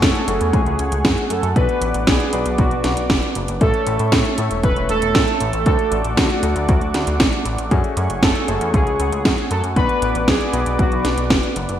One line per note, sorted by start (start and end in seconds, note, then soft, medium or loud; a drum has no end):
0.00 0.14 F#1 loud
0.00 0.25 A3 medium
0.00 1.54 A3 medium
0.00 0.25 C#4 medium
0.00 0.25 F#4 medium
0.00 0.25 G#4 loud
0.00 0.55 A4 medium
0.00 3.57 F#5 medium
0.00 1.54 G#5 medium
0.00 1.54 C#6 medium
0.00 kick loud
0.00 snare loud
0.00 closed hi-hat medium
0.15 closed hi-hat soft
0.28 0.39 F#1 medium
0.28 1.53 A3 medium
0.28 1.53 C#4 medium
0.28 1.53 F#4 medium
0.28 1.53 G#4 medium
0.28 closed hi-hat medium
0.41 0.52 E2 medium
0.41 closed hi-hat soft
0.53 0.65 C#2 loud
0.53 1.32 G#4 loud
0.53 kick loud
0.53 closed hi-hat soft
0.66 0.78 C#2 medium
0.66 closed hi-hat soft
0.79 0.91 C#2 medium
0.79 closed hi-hat medium
0.92 1.03 C#2 medium
0.92 closed hi-hat medium
1.05 1.16 F#2 loud
1.05 kick loud
1.05 snare loud
1.05 closed hi-hat medium
1.18 closed hi-hat soft
1.30 1.42 F#2 medium
1.30 1.56 A4 loud
1.30 closed hi-hat medium
1.43 1.55 F#2 medium
1.43 closed hi-hat soft
1.55 1.67 B1 loud
1.55 2.30 B3 medium
1.55 2.30 D4 medium
1.55 2.30 F#4 medium
1.55 2.03 B4 loud
1.55 2.30 B4 loud
1.55 3.59 B4 medium
1.55 3.59 D5 medium
1.55 3.59 D6 medium
1.55 kick loud
1.55 closed hi-hat medium
1.69 closed hi-hat soft
1.81 1.93 A1 medium
1.81 closed hi-hat medium
1.94 2.06 A1 medium
1.94 closed hi-hat medium
2.07 2.19 B1 loud
2.07 2.60 G#4 loud
2.07 kick loud
2.07 snare loud
2.07 closed hi-hat medium
2.20 closed hi-hat soft
2.33 2.44 B1 medium
2.33 3.58 B3 medium
2.33 3.58 D4 medium
2.33 3.58 F#4 medium
2.33 3.58 B4 medium
2.33 closed hi-hat medium
2.46 2.57 B1 medium
2.46 closed hi-hat soft
2.58 2.70 B1 loud
2.58 3.31 F#4 medium
2.58 kick loud
2.58 closed hi-hat medium
2.71 2.83 B1 medium
2.71 closed hi-hat soft
2.84 2.96 B1 medium
2.84 snare medium
2.84 closed hi-hat medium
2.97 3.08 B1 medium
2.97 closed hi-hat medium
3.10 3.21 F#1 loud
3.10 kick loud
3.10 snare loud
3.10 closed hi-hat soft
3.23 closed hi-hat soft
3.35 3.47 F#1 medium
3.35 closed hi-hat medium
3.48 3.60 F#1 medium
3.48 closed hi-hat medium
3.61 3.73 A1 medium
3.61 9.72 A3 medium
3.61 4.35 A3 medium
3.61 4.35 C#4 medium
3.61 4.35 E4 medium
3.61 4.34 A4 loud
3.61 4.35 A4 loud
3.61 5.64 C#5 medium
3.61 5.64 E5 medium
3.61 5.64 C#6 medium
3.61 kick loud
3.61 closed hi-hat soft
3.74 closed hi-hat soft
3.87 3.98 A1 medium
3.87 closed hi-hat medium
3.99 4.11 A2 medium
3.99 closed hi-hat medium
4.12 4.24 A2 loud
4.12 kick loud
4.12 snare loud
4.12 closed hi-hat medium
4.25 closed hi-hat soft
4.38 4.49 A2 medium
4.38 5.63 A3 medium
4.38 5.63 C#4 medium
4.38 5.63 E4 medium
4.38 5.63 A4 medium
4.38 closed hi-hat medium
4.51 4.62 E1 medium
4.51 closed hi-hat medium
4.63 4.75 E1 loud
4.63 4.90 B4 loud
4.63 kick loud
4.63 closed hi-hat soft
4.76 4.88 E1 medium
4.76 closed hi-hat soft
4.89 5.01 E1 medium
4.89 5.64 A4 loud
4.89 closed hi-hat medium
5.02 5.14 E1 medium
5.02 closed hi-hat soft
5.15 5.26 A1 loud
5.15 kick loud
5.15 snare loud
5.15 closed hi-hat medium
5.28 closed hi-hat soft
5.40 5.52 A1 medium
5.40 closed hi-hat medium
5.53 5.65 A1 medium
5.53 closed hi-hat soft
5.66 5.78 D2 loud
5.66 6.40 A3 medium
5.66 6.40 D4 medium
5.66 6.40 F#4 medium
5.66 6.19 A4 loud
5.66 6.40 A4 loud
5.66 7.69 D5 medium
5.66 7.69 F#5 medium
5.66 7.69 D6 medium
5.66 kick loud
5.66 closed hi-hat soft
5.79 closed hi-hat soft
5.92 6.03 A1 medium
5.92 closed hi-hat medium
6.05 6.16 A1 medium
6.05 closed hi-hat soft
6.17 6.29 D2 loud
6.17 6.67 F#4 medium
6.17 kick loud
6.17 snare loud
6.17 closed hi-hat medium
6.30 closed hi-hat soft
6.43 6.54 D2 medium
6.43 7.68 A3 medium
6.43 7.68 D4 medium
6.43 7.68 F#4 medium
6.43 7.68 A4 medium
6.43 closed hi-hat medium
6.56 6.67 D2 medium
6.56 closed hi-hat soft
6.69 6.80 D2 loud
6.69 7.16 F#4 medium
6.69 kick loud
6.69 closed hi-hat soft
6.81 6.93 D2 medium
6.81 closed hi-hat soft
6.94 7.06 D2 medium
6.94 snare medium
6.94 closed hi-hat medium
7.07 7.19 D2 medium
7.07 closed hi-hat soft
7.20 7.32 A1 loud
7.20 kick loud
7.20 snare loud
7.20 closed hi-hat medium
7.33 closed hi-hat soft
7.45 7.57 A1 medium
7.45 closed hi-hat medium
7.58 7.70 A1 medium
7.58 closed hi-hat soft
7.71 7.83 F#2 loud
7.71 8.45 A3 medium
7.71 8.45 C#4 medium
7.71 8.45 F#4 medium
7.71 8.45 G#4 loud
7.71 11.77 F#5 medium
7.71 9.74 G#5 medium
7.71 9.74 C#6 medium
7.71 kick loud
7.71 closed hi-hat soft
7.84 closed hi-hat soft
7.97 8.08 F#2 medium
7.97 closed hi-hat medium
8.10 8.21 F#1 medium
8.10 closed hi-hat soft
8.23 8.34 F#1 loud
8.23 8.70 A4 loud
8.23 kick loud
8.23 snare loud
8.23 closed hi-hat medium
8.36 closed hi-hat soft
8.48 8.60 F#1 medium
8.48 9.73 A3 medium
8.48 9.73 C#4 medium
8.48 9.73 F#4 medium
8.48 9.73 G#4 medium
8.48 closed hi-hat medium
8.61 8.73 E2 medium
8.61 closed hi-hat soft
8.74 8.85 C#2 loud
8.74 9.53 G#4 loud
8.74 kick loud
8.74 closed hi-hat soft
8.87 8.98 C#2 medium
8.87 closed hi-hat soft
9.00 9.11 C#2 medium
9.00 closed hi-hat medium
9.12 9.24 C#2 medium
9.12 closed hi-hat soft
9.25 9.37 F#2 loud
9.25 kick loud
9.25 snare loud
9.25 closed hi-hat soft
9.38 closed hi-hat soft
9.51 9.62 F#2 medium
9.51 9.62 A4 loud
9.51 closed hi-hat medium
9.63 9.75 F#2 medium
9.63 closed hi-hat soft
9.76 9.88 B1 loud
9.76 10.50 B3 medium
9.76 10.50 D4 medium
9.76 10.50 F#4 medium
9.76 11.79 B4 medium
9.76 10.50 B4 loud
9.76 10.24 B4 loud
9.76 11.79 D5 medium
9.76 11.79 D6 medium
9.76 kick loud
9.76 closed hi-hat soft
9.89 closed hi-hat soft
10.02 10.13 A1 medium
10.02 closed hi-hat medium
10.15 10.26 A1 medium
10.15 closed hi-hat soft
10.28 10.39 B1 loud
10.28 10.80 G#4 loud
10.28 kick loud
10.28 snare loud
10.28 closed hi-hat soft
10.41 closed hi-hat soft
10.53 10.65 B1 medium
10.53 11.78 B3 medium
10.53 11.78 D4 medium
10.53 11.78 F#4 medium
10.53 11.78 B4 medium
10.53 closed hi-hat medium
10.66 10.78 B1 medium
10.66 closed hi-hat soft
10.79 10.91 B1 loud
10.79 11.52 F#4 medium
10.79 kick loud
10.79 closed hi-hat soft
10.92 11.03 B1 medium
10.92 closed hi-hat soft
11.05 11.16 B1 medium
11.05 snare medium
11.05 closed hi-hat medium
11.17 11.29 B1 medium
11.17 closed hi-hat soft
11.30 11.42 F#1 loud
11.30 kick loud
11.30 snare loud
11.30 closed hi-hat soft
11.43 closed hi-hat soft
11.56 11.67 F#1 medium
11.56 closed hi-hat medium
11.69 11.80 F#1 medium
11.69 closed hi-hat soft